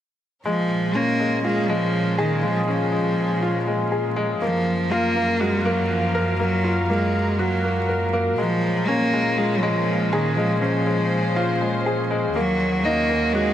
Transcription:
0.45 A#2 F3 G#3 C#4 A#4
0.95 A#3 C#4
1.20 G#3
1.44 G#3 F4
1.69 F3 G#3
2.18 D#3 G#4
2.43 F3 G#3
2.68 F3 C#4
2.92 G#3
3.42 F4
3.67 G#3
3.92 G#4
4.16 G#3
4.41 F#2 F3 A#3 F5
4.91 A#3 F4
5.16 A#3
5.41 G#3 F#4
5.65 F#3 A#3
5.90 F3
6.15 A#4
6.40 F#3 A#3
6.64 F4
6.89 G#3 A#3
7.39 F#3 F#4
7.64 A#3
7.89 A#4
8.13 A#3
8.37 A#2 F3 G#3 C#4
8.87 A#3 C#4
9.13 G#3
9.37 G#3 F4
9.61 F3 G#3
10.12 D#3 G#4
10.36 F3 G#3 C5
10.61 F3 C#4
10.87 G#3
11.36 F4
11.61 G#3
11.86 G#4
12.11 G#3
12.35 D#2 D#3 F#3 A#3 C#4 F#4
12.84 A#3 D#4
13.10 A#3
13.33 G#3 F#4

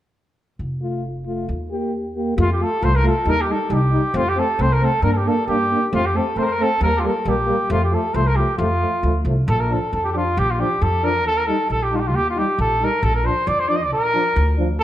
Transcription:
0.59 F1
0.81 A3 F4
1.26 A3 F4
1.49 D#2
1.71 A#3 G4
2.15 A#3 G4
2.37 F2 A3 F4
2.52 G4
2.59 A3 F4 A4
2.81 C2 A3 F4 C5
2.96 A#4
3.04 A3 F4 A4
3.25 D#2 G3 D#4 A#4
3.41 G4
3.48 G3 D#4 A4
3.69 C2 G3 D#4 G4
3.92 G3 D#4
4.14 F2 A3 C4 F4
4.28 G4
4.36 A3 C4 A4
4.59 C2 A3 C4 C5
4.73 A#4
4.81 A3 C4 A4
5.02 G2 A#3 D4 A#4
5.12 A4
5.17 G4
5.26 A#3 D4 A4
5.47 G2 A#3 D4 G4
5.71 A#3 D4
5.92 F2 A3 C4 F4
6.05 G4
6.14 A3 C4 A4
6.36 F2 A3 C4 C5
6.42 A#4 C5
6.50 A#4
6.59 A3 C4 A4
6.81 D#2 G3 A#3 A#4
6.96 F4 G4
7.02 G3 A#3 G4
7.06 A4
7.25 A#1 G3 A#3 G4
7.47 G3 A#3
7.69 F2 F3 A3 F4
7.84 G4
7.91 F3 A3 A4
8.13 C2 F3 A3 C5
8.27 A#4
8.36 F3 A3 G4
8.58 F2 F3 A3 F4
8.80 F3 A3
9.03 D2 F3 A3
9.25 C2 F3 A3
9.48 A#1 A4
9.60 A#4
9.70 F3 D4 A4
9.93 F2 A4
10.04 G4 A4
10.12 F3 D4 G4
10.17 F4
10.37 A#1 G4
10.51 F4
10.59 F3 D4 G4
10.82 F2 A4
11.04 F3 D4 A#4
11.25 D#2 A4
11.37 A#4
11.46 G3 D#4 A4
11.70 A#1 A4
11.83 G4
11.92 G3 D#4 F4
11.99 G4
12.07 F4
12.14 D#2 G4
12.30 F4
12.36 G3 D#4 G4
12.59 A#1 A4
12.81 G3 D#4 A#4
13.03 A#1 A4
13.15 A#4
13.24 F3 D4 C5
13.47 F2 D5
13.60 C5
13.68 F3 D4 D5
13.75 D#5
13.83 D5
13.91 A#1 A#4
14.14 F3 D4
14.36 D2
14.58 F3 D4
14.79 D#2 A4

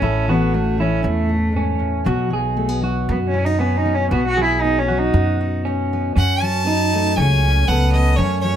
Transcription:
Already playing: E3 C#4
0.02 A1 A2 E4 A4
0.28 E3 B3 F#4
0.54 A3 C#4
0.78 E3 C#4 E4
1.03 E2 C#4
1.07 A3
1.29 A4
1.52 G#2
1.56 C#4
1.79 A2
2.05 B1 B2 F#3 B3 D#4 F#4
2.30 F#3 G#4
2.57 A3
2.69 B3
2.81 F#3 F#4
3.09 F#2 B3
3.28 C#4
3.34 E4
3.44 D#4 F#4
3.59 B3 C#4 D#4
3.77 D#4
3.86 B3
3.94 C#4
4.11 B1 B2 B3 F#4
4.28 F#4
4.37 F#3 G#4
4.45 E4
4.61 B3 D#4
4.79 C#4
4.88 F#3 F#4
4.98 D#4
5.14 F#2 B3
5.41 F#4
5.65 C#4 D#4
5.93 B3
6.16 F#2 C#4 F#5
6.42 F#3 A5
6.67 C#4 D#4
6.94 A3
7.16 C#2 C#3 C#4 G#5
7.44 C#4
7.68 C#2 B3 A4 F#5
7.92 C#4 D#5
8.16 F#2 C#4 C#5
8.41 F#3 C#5

